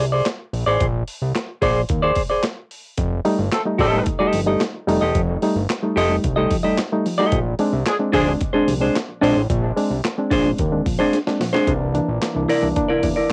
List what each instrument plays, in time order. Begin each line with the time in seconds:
0.00 analog synth bass C2
0.12 clean electric guitar G#4 C5 D5
0.26 snare, clap, closed hi-hat
0.53 analog synth bass A#1, open hi-hat
0.66 analog synth bass A1, clean electric guitar G#4 C5 D5
0.80 analog synth bass A#1, kick, closed hi-hat
1.08 open hi-hat
1.22 analog synth bass C2
1.35 snare, clap, closed hi-hat
1.62 analog synth bass A#1, clean electric guitar G#4 C5 D5, kick, open hi-hat
1.89 analog synth bass D#2, kick, closed hi-hat
2.03 clean electric guitar G#4 C5 D5
2.15 kick, open hi-hat
2.30 clean electric guitar G#4 C5 D5
2.43 snare, clap, closed hi-hat
2.71 open hi-hat
2.97 analog synth bass F1, reed electric piano F3, kick, closed hi-hat
3.25 reed electric piano G3 A3 D#4, open hi-hat
3.38 analog synth bass G1, reed electric piano A3 D#4
3.52 horn section D#3 A3 C4 A4, snare, clap, closed hi-hat
3.65 reed electric piano G3 A3 D#4
3.79 analog synth bass A1, horn section D#3 A3 C4 A4, reed electric piano F3, clean electric guitar G4 A4 D#5, kick, open hi-hat
3.93 reed electric piano G3 A3 D#4
4.06 kick, closed hi-hat
4.19 reed electric piano G3 A3 D#4, clean electric guitar G4 A4 D#5
4.33 analog synth bass G1, reed electric piano F3, open hi-hat
4.47 reed electric piano G3 A3 D#4, clean electric guitar G4 A4 D#5
4.61 snare, clap, closed hi-hat
4.87 analog synth bass F1, reed electric piano G3 A3 D#4, open hi-hat
5.01 analog synth bass E1, clean electric guitar G4 A4 D#5
5.15 analog synth bass F1, reed electric piano F3, kick, closed hi-hat
5.42 reed electric piano G3 A3 D#4, open hi-hat
5.55 analog synth bass G1, reed electric piano A3 D#4
5.70 snare, clap, closed hi-hat
5.82 reed electric piano G3 A3 D#4
5.96 analog synth bass F1, reed electric piano F3, clean electric guitar G4 A4 D#5, open hi-hat
6.10 reed electric piano G3 A3 D#4
6.24 analog synth bass C2, kick, closed hi-hat
6.36 reed electric piano G3 A3 D#4, clean electric guitar G4 A4 D#5
6.51 reed electric piano F3, kick, open hi-hat
6.63 reed electric piano G3 A3 D#4, clean electric guitar G4 A4 D#5
6.78 snare, clap, closed hi-hat
6.92 reed electric piano G3 A3 D#4
7.06 reed electric piano F3, open hi-hat
7.18 reed electric piano G3 A3 D#4, clean electric guitar G4 A4 D#5
7.32 analog synth bass A#1, reed electric piano A#2 F3, kick, closed hi-hat
7.59 reed electric piano G#3 C4 D4, open hi-hat
7.73 analog synth bass C2, reed electric piano C4 D4
7.87 horn section F3 G#3 D4 G#4, snare, clap, closed hi-hat
8.00 reed electric piano G#3 C4 D4
8.13 analog synth bass D2, reed electric piano A#2 F3, horn section F3 G#3 D4 G#4, clean electric guitar D4 G#4 C5, kick, open hi-hat
8.28 reed electric piano G#3 C4 D4
8.41 kick, closed hi-hat
8.53 reed electric piano G#3 C4 D4, clean electric guitar D4 G#4 C5
8.68 analog synth bass C2, reed electric piano A#2 F3, open hi-hat
8.81 reed electric piano G#3 C4 D4, clean electric guitar D4 G#4 C5
8.96 snare, clap, closed hi-hat
9.21 analog synth bass A#1, reed electric piano G#3 C4 D4, clean electric guitar D4 G#4 C5, open hi-hat
9.36 analog synth bass A1
9.50 analog synth bass A#1, reed electric piano A#2 F3, kick, closed hi-hat
9.76 reed electric piano G#3 C4 D4, open hi-hat
9.90 analog synth bass C2, reed electric piano C4 D4
10.05 snare, clap, closed hi-hat
10.18 reed electric piano G#3 C4 D4
10.30 analog synth bass A#1, reed electric piano A#2 F3, clean electric guitar D4 G#4 C5, kick, open hi-hat
10.45 reed electric piano G#3 C4 D4
10.58 analog synth bass D#2, kick, closed hi-hat
10.71 reed electric piano G#3 C4 D4
10.86 reed electric piano A#2 F3, kick, open hi-hat
10.98 reed electric piano G#3 C4 D4, clean electric guitar D4 G#4 C5
11.13 snare, closed hi-hat
11.27 reed electric piano G#3 C4 D4, snare
11.40 reed electric piano A#2 F3, snare, open hi-hat
11.53 reed electric piano G#3 C4 D4, clean electric guitar D4 G#4 C5, snare
11.67 analog synth bass C2, reed electric piano C3, tonewheel organ E3 A#3 D4, kick, closed hi-hat
11.81 reed electric piano A#3 D4
11.94 reed electric piano E3 A#3 D4, closed hi-hat
12.09 analog synth bass A#1
12.22 snare, clap, closed hi-hat
12.35 analog synth bass C2, reed electric piano E3 A#3 D4
12.49 reed electric piano C3, clean electric guitar E4 A#4 D5, open hi-hat
12.62 analog synth bass C2, reed electric piano E3 A#3 D4
12.76 reed electric piano A#3 D4, kick, closed hi-hat
12.88 analog synth bass E2, reed electric piano C3, clean electric guitar E4 A#4 D5
13.03 analog synth bass E2, reed electric piano A#3 D4, kick, open hi-hat
13.16 clean electric guitar E4 A#4 D5